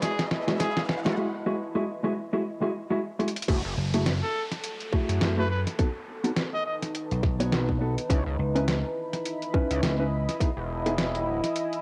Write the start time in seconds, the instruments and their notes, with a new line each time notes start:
Already playing: ambient pad E4 D#5 B5, riser
0.02 analog synth bass B1, clean electric guitar G#3 E4 F#4 G#4, trumpet G#4, kick, snare, closed hi-hat
0.19 snare, closed hi-hat
0.31 analog synth bass E2, snare
0.47 clean electric guitar G#3 E4 F#4 G#4, snare, closed hi-hat
0.60 clean electric guitar G#3 E4 F#4 G#4, trumpet G#4, kick, snare, closed hi-hat
0.77 snare
0.89 analog synth bass B1, snare
1.05 analog synth bass G#1, clean electric guitar G#3 E4 F#4 G#4, snare, closed hi-hat
1.17 clean electric guitar G#3 E4 F#4 G#4
1.46 clean electric guitar G#3 E4 F#4 G#4
1.75 clean electric guitar G#3 E4 F#4 G#4
2.04 clean electric guitar G#3 E4 F#4 G#4
2.33 clean electric guitar G#3 E4 F#4 G#4
2.62 clean electric guitar G#3 E4 F#4 G#4
2.90 clean electric guitar G#3 E4 F#4 G#4
3.19 clean electric guitar G#3 E4 F#4 G#4, closed hi-hat
3.28 closed hi-hat
3.36 closed hi-hat
3.42 closed hi-hat
3.48 analog synth bass F#1, clean electric guitar A3 E4 F#4 G#4, kick, closed hi-hat, crash, downlifter
3.65 analog synth bass F#1
3.73 ambient pad A4
3.77 slap bass F#1
3.94 clean electric guitar A3 E4 F#4 G#4, closed hi-hat
4.06 snare, closed hi-hat
4.23 trumpet A4
4.52 snare, closed hi-hat
4.64 closed hi-hat
4.80 closed hi-hat
4.93 clean electric guitar A3 E4 F#4 G#4, kick
5.09 analog synth bass F#2, closed hi-hat
5.21 slap bass F#2, snare, closed hi-hat
5.37 clean electric guitar A3 E4 F#4 G#4, trumpet B4
5.51 trumpet B4
5.67 snare, closed hi-hat
5.79 clean electric guitar B3 D#4 F#4 A4, ambient pad D#4, kick, closed hi-hat
6.16 ambient pad B4
6.24 clean electric guitar B3 D#4 F#4 A4, closed hi-hat
6.30 ambient pad A5
6.37 snare, closed hi-hat
6.54 trumpet D#5
6.66 trumpet D#5
6.82 snare, closed hi-hat
6.95 closed hi-hat
7.11 slap bass B1, closed hi-hat
7.23 kick, snare
7.40 clean electric guitar B3 D#4 F#4 C#5, closed hi-hat
7.52 slap bass B1, snare, closed hi-hat
7.69 kick
7.80 clean electric guitar B3 D#4 F#4 A4
7.98 closed hi-hat
8.09 analog synth bass C#2, clean electric guitar C#4 D#4 E4 B4, ambient pad E4, kick, closed hi-hat
8.26 analog synth bass C#2
8.35 ambient pad D#5
8.39 slap bass C#2
8.49 ambient pad B5
8.55 clean electric guitar C#4 D#4 E4 B4, closed hi-hat
8.68 snare, closed hi-hat
9.13 snare, closed hi-hat
9.25 closed hi-hat
9.42 closed hi-hat
9.54 clean electric guitar C#4 D#4 E4 B4, kick
9.71 analog synth bass C#2, closed hi-hat
9.83 slap bass C#2, snare, closed hi-hat
9.99 clean electric guitar C#4 D#4 E4 B4
10.29 snare, closed hi-hat
10.40 clean electric guitar B3 D#4 E4 G#4, kick, closed hi-hat
10.57 analog synth bass E1
10.86 clean electric guitar B3 D#4 E4 G#4, closed hi-hat
10.98 snare, closed hi-hat
11.03 ambient pad G#5
11.15 analog synth bass D#1, closed hi-hat
11.44 snare, closed hi-hat
11.56 closed hi-hat
11.73 closed hi-hat